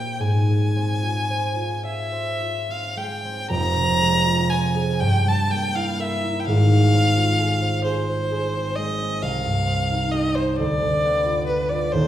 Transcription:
0.00 0.25 A#2 medium
0.00 0.25 A#3 soft
0.00 0.75 C4 soft
0.00 0.25 G4 soft
0.00 0.26 A#4 soft
0.00 1.29 C5 soft
0.00 0.22 G5 medium
0.19 3.54 G#2 soft
0.19 1.85 G#5 medium
0.48 2.95 G#3 soft
0.76 2.67 C4 soft
1.03 1.55 F4 soft
1.30 2.11 C5 soft
1.56 2.38 F4 soft
1.84 2.72 E5 medium
1.84 5.03 F5 soft
2.12 4.49 C5 soft
2.40 4.25 F4 soft
2.69 3.24 C4 soft
2.69 2.99 F5 medium
2.96 4.00 G#3 soft
2.96 3.50 G5 medium
3.25 5.03 C4 soft
3.49 5.03 F1 medium
3.49 5.03 F2 medium
3.49 4.52 A#5 loud
3.76 5.04 C3 soft
4.01 5.04 G#3 soft
4.26 5.04 F4 soft
4.50 5.03 C5 soft
4.50 5.01 G#5 medium
4.75 5.03 G#4 soft
5.00 6.50 G2 medium
5.00 5.29 G5 medium
5.26 6.50 G3 soft
5.26 5.52 A5 medium
5.50 6.50 A#3 soft
5.50 5.77 G5 medium
5.75 6.22 E4 soft
5.75 6.02 F5 medium
5.99 6.50 A#4 soft
5.99 6.42 E5 medium
6.24 6.50 E4 soft
6.40 6.47 G5 medium
6.45 9.24 G#1 medium
6.45 9.25 G#2 medium
6.45 7.83 F5 loud
6.71 8.77 G#3 soft
6.94 8.54 C4 soft
7.16 9.24 F4 soft
7.39 7.84 G#4 soft
7.62 8.08 C5 soft
7.84 8.31 G#4 medium
7.84 8.77 C5 medium
8.09 10.35 C5 soft
8.32 9.25 G#4 soft
8.55 8.99 C4 soft
8.75 9.25 G#3 soft
8.75 9.23 D#5 medium
9.00 9.66 C4 soft
9.22 10.62 C2 medium
9.22 10.13 F5 medium
9.45 10.62 G2 soft
9.68 10.62 C4 soft
9.91 10.62 D#4 soft
10.12 10.62 G4 soft
10.12 10.37 D#5 medium
10.35 10.58 C5 medium
10.35 10.62 C5 soft
10.57 11.96 D2 medium
10.57 11.46 D5 medium
10.81 11.96 D3 soft
11.04 11.97 B3 soft
11.26 11.71 F4 soft
11.47 11.71 B4 medium
11.47 11.97 B4 soft
11.69 11.97 F4 soft
11.69 11.94 D5 medium
11.92 12.07 D#1 medium
11.92 12.07 D#2 medium
11.92 12.07 C5 medium

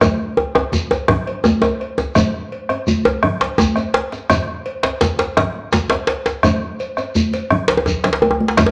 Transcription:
0.01 bombo rim medium
0.01 bombo low loud
0.01 cowbell medium
0.01 djembe slap soft
0.01 djembe tone medium
0.01 high conga medium
0.01 djembe bass medium
0.01 low conga medium
0.01 shekere medium
0.19 bombo rim soft
0.37 cowbell soft
0.37 djembe tone medium
0.55 bombo rim medium
0.55 cowbell medium
0.55 djembe tone loud
0.55 djembe tone medium
0.72 bombo rim soft
0.72 bombo low loud
0.72 djembe slap soft
0.72 high conga medium
0.72 shekere medium
0.91 cowbell medium
0.91 djembe slap medium
0.91 djembe tone medium
0.91 shekere soft
1.08 bombo rim medium
1.08 djembe slap soft
1.08 djembe tone loud
1.08 djembe bass medium
1.08 low conga medium
1.27 bombo rim soft
1.27 cowbell medium
1.27 high conga soft
1.44 bombo low medium
1.44 djembe tone medium
1.44 high conga medium
1.44 shekere medium
1.62 bombo rim medium
1.62 cowbell medium
1.62 djembe slap soft
1.62 djembe tone loud
1.62 djembe tone medium
1.62 shekere soft
1.80 bombo rim soft
1.80 cowbell soft
1.98 bombo rim soft
1.98 djembe slap medium
1.98 djembe tone medium
1.98 shekere soft
2.15 bombo rim loud
2.15 bombo low medium
2.15 cowbell medium
2.15 djembe slap soft
2.15 high conga medium
2.15 low conga medium
2.15 djembe bass medium
2.15 shekere medium
2.34 bombo rim soft
2.52 cowbell soft
2.69 bombo rim medium
2.69 cowbell medium
2.69 djembe tone medium
2.87 bombo rim soft
2.87 bombo low medium
2.87 high conga medium
2.87 shekere medium
3.05 cowbell medium
3.05 djembe slap medium
3.05 djembe tone loud
3.05 shekere soft
3.23 bombo rim loud
3.23 djembe slap soft
3.23 djembe bass medium
3.23 low conga medium
3.40 bombo rim soft
3.40 cowbell medium
3.40 djembe slap medium
3.40 high conga soft
3.58 bombo low medium
3.58 djembe tone loud
3.58 high conga medium
3.58 shekere medium
3.76 bombo rim medium
3.76 cowbell medium
3.76 djembe slap soft
3.76 djembe tone medium
3.76 shekere soft
3.94 bombo rim soft
3.94 cowbell medium
3.94 djembe slap medium
4.12 bombo rim soft
4.12 djembe slap medium
4.12 shekere soft
4.30 bombo rim loud
4.30 bombo low loud
4.30 cowbell medium
4.30 djembe slap soft
4.30 high conga medium
4.30 djembe bass medium
4.30 low conga medium
4.30 shekere medium
4.48 bombo rim soft
4.66 cowbell medium
4.83 bombo rim medium
4.83 cowbell medium
4.83 djembe slap medium
4.83 djembe tone soft
5.01 bombo rim soft
5.01 bombo low loud
5.01 djembe slap medium
5.01 djembe slap soft
5.01 high conga medium
5.01 shekere medium
5.19 cowbell soft
5.19 djembe slap medium
5.19 shekere soft
5.37 bombo rim loud
5.37 djembe slap soft
5.37 djembe slap medium
5.37 low conga medium
5.37 djembe bass medium
5.55 bombo rim soft
5.55 high conga soft
5.72 bombo low medium
5.72 djembe slap medium
5.72 high conga medium
5.72 shekere medium
5.90 bombo rim medium
5.90 cowbell medium
5.90 djembe slap medium
5.90 djembe slap soft
5.90 djembe tone medium
5.90 shekere soft
6.07 bombo rim soft
6.07 cowbell medium
6.07 djembe slap medium
6.26 bombo rim soft
6.26 djembe slap medium
6.26 djembe slap soft
6.26 shekere soft
6.43 bombo rim loud
6.43 bombo low loud
6.43 cowbell medium
6.43 high conga medium
6.43 djembe bass medium
6.43 low conga medium
6.43 shekere medium
6.63 high conga soft
6.80 cowbell medium
6.80 shekere soft
6.97 bombo rim medium
6.97 cowbell medium
6.97 djembe slap soft
6.97 djembe tone medium
6.97 shekere soft
7.15 bombo low loud
7.15 high conga medium
7.15 shekere medium
7.33 cowbell medium
7.33 djembe slap medium
7.33 high conga soft
7.33 shekere soft
7.50 bombo rim loud
7.50 djembe bass medium
7.50 low conga medium
7.68 cowbell medium
7.68 djembe slap loud
7.68 low conga soft
7.77 djembe tone medium
7.86 bombo rim soft
7.86 bombo low medium
7.86 djembe slap soft
7.86 djembe tone medium
7.86 low conga medium
7.86 shekere medium
8.04 bombo rim medium
8.04 cowbell medium
8.04 djembe slap medium
8.04 djembe tone medium
8.04 low conga medium
8.04 shekere soft
8.13 djembe slap medium
8.22 cowbell soft
8.22 djembe tone medium
8.22 high conga medium
8.31 djembe tone medium
8.40 high conga medium
8.48 djembe slap medium
8.57 bombo rim loud
8.57 bombo low loud
8.57 cowbell medium
8.57 djembe slap medium
8.57 djembe slap soft
8.57 high conga medium
8.57 low conga medium
8.57 djembe bass medium
8.57 shekere medium
8.66 djembe tone medium

